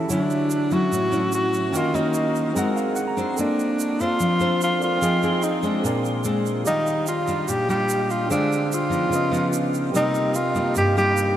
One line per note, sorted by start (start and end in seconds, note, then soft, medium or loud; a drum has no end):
0.00 0.11 C#4 soft
0.00 0.11 G4 soft
0.00 0.11 A4 soft
0.00 0.12 E5 soft
0.00 0.11 A5 soft
0.09 0.90 D3 medium
0.09 0.68 F#3 soft
0.09 0.74 D4 medium
0.09 0.68 E4 medium
0.09 1.70 F#4 soft
0.09 1.71 C#5 soft
0.09 shaker medium
0.13 1.72 E5 soft
0.30 shaker soft
0.50 shaker medium
0.71 1.09 F#3 medium
0.71 1.09 C#4 soft
0.71 1.09 E4 medium
0.71 1.33 F#4 loud
0.71 shaker soft
0.92 1.71 A2 medium
0.92 shaker medium
1.11 1.72 F#3 medium
1.11 1.72 C#4 medium
1.11 1.72 E4 medium
1.11 shaker soft
1.32 1.78 F#4 medium
1.32 shaker medium
1.54 shaker soft
1.70 2.53 D#3 medium
1.70 1.90 A#3 medium
1.70 2.52 C#4 soft
1.70 1.90 C#4 soft
1.70 2.53 F#4 soft
1.70 1.91 F#4 medium
1.70 shaker medium
1.75 1.97 F4 medium
1.75 2.55 A#4 soft
1.75 2.56 D#5 soft
1.94 2.52 A#3 medium
1.94 2.52 C#4 medium
1.94 2.77 D#4 medium
1.94 2.52 F#4 medium
1.94 shaker soft
2.14 shaker medium
2.35 shaker soft
2.53 3.36 G#3 medium
2.53 3.33 C4 medium
2.53 2.97 C4 soft
2.53 3.36 G#4 medium
2.53 3.36 A#4 soft
2.53 shaker medium
2.57 2.97 F#4 soft
2.57 2.97 A#4 medium
2.57 2.95 F#5 medium
2.76 2.95 F5 soft
2.76 shaker soft
2.96 3.06 F#5 medium
2.96 shaker medium
3.08 3.36 A#5 soft
3.17 3.96 D4 medium
3.17 3.96 A4 soft
3.17 3.96 C5 medium
3.17 shaker soft
3.34 4.77 C4 soft
3.34 4.78 A4 soft
3.34 shaker medium
3.39 4.18 A#3 medium
3.39 4.02 D4 medium
3.39 4.80 D5 soft
3.59 shaker soft
3.79 shaker medium
4.00 4.37 D4 medium
4.00 4.61 F4 loud
4.00 4.38 A4 medium
4.00 4.38 C5 medium
4.00 shaker soft
4.20 5.00 F3 medium
4.20 shaker medium
4.40 5.00 D4 medium
4.40 5.00 A4 medium
4.40 5.00 C5 medium
4.40 shaker soft
4.61 4.81 F4 medium
4.61 shaker medium
4.79 4.96 C4 soft
4.79 5.01 A4 soft
4.79 5.01 A#4 soft
4.79 5.02 D5 soft
4.79 shaker soft
4.84 5.45 F4 medium
4.98 5.79 C4 soft
4.98 5.81 F4 soft
5.02 5.82 F3 medium
5.02 5.19 C4 soft
5.02 5.19 D#4 soft
5.02 5.81 G#4 soft
5.02 5.19 G#4 medium
5.02 5.83 D#5 soft
5.02 shaker medium
5.23 5.60 C4 medium
5.23 5.60 D#4 medium
5.23 5.61 G#4 medium
5.23 shaker soft
5.43 5.67 D#4 medium
5.43 shaker medium
5.63 6.21 G#3 medium
5.63 6.21 C4 soft
5.63 6.22 D4 medium
5.63 6.05 D4 medium
5.63 shaker soft
5.80 6.64 A#2 medium
5.80 6.62 C4 soft
5.80 6.63 G#4 soft
5.85 6.65 A#4 soft
5.85 6.65 D5 soft
5.85 shaker medium
6.05 shaker soft
6.24 6.62 G#3 soft
6.24 6.62 C4 medium
6.24 6.63 D4 medium
6.24 shaker medium
6.46 shaker soft
6.64 7.46 D#3 medium
6.64 7.07 G3 soft
6.64 7.04 D#4 medium
6.64 7.07 F4 medium
6.64 8.26 G4 soft
6.64 8.27 D5 soft
6.64 shaker medium
6.68 8.28 F5 soft
6.87 shaker soft
7.07 7.50 F4 medium
7.07 shaker medium
7.27 7.65 G3 medium
7.27 7.65 D4 medium
7.27 7.65 F4 medium
7.27 shaker soft
7.48 8.28 A#2 medium
7.48 7.69 G4 medium
7.48 shaker medium
7.69 8.27 G3 medium
7.69 8.27 D4 medium
7.69 8.27 F4 medium
7.69 8.12 G4 medium
7.69 shaker soft
7.89 shaker medium
8.10 8.30 F4 medium
8.10 shaker soft
8.26 9.09 D3 medium
8.26 9.08 D4 soft
8.26 9.10 G#4 soft
8.30 8.71 G#3 medium
8.30 8.71 C4 medium
8.30 8.76 D4 medium
8.30 8.71 F4 medium
8.30 9.11 C5 soft
8.30 9.12 F5 soft
8.30 shaker medium
8.52 shaker soft
8.72 9.75 F4 medium
8.72 shaker medium
8.89 9.28 F3 soft
8.89 9.29 B3 medium
8.89 9.29 D#4 medium
8.89 shaker soft
9.09 9.91 C#3 medium
9.09 9.91 C#4 soft
9.09 9.92 F4 soft
9.09 9.93 B4 soft
9.09 shaker medium
9.16 9.94 D#5 medium
9.31 9.90 F3 medium
9.31 9.90 B3 medium
9.31 9.91 D#4 medium
9.31 shaker soft
9.53 shaker medium
9.74 shaker soft
9.90 11.37 C4 soft
9.90 11.37 G4 soft
9.90 11.37 A#4 soft
9.94 10.74 C3 medium
9.94 10.35 G3 medium
9.94 10.35 A#3 soft
9.94 10.35 D#4 medium
9.94 10.38 D#4 loud
9.94 11.37 D#5 medium
9.94 shaker medium
10.15 shaker soft
10.35 10.77 F4 medium
10.35 shaker medium
10.55 10.93 G3 medium
10.55 10.93 A#3 medium
10.55 10.93 D#4 medium
10.55 shaker soft
10.75 11.37 G2 medium
10.75 10.96 G4 medium
10.75 shaker medium
10.97 11.37 G3 medium
10.97 11.37 A#3 medium
10.97 11.37 D#4 medium
10.97 11.35 G4 loud
10.97 shaker soft
11.17 shaker medium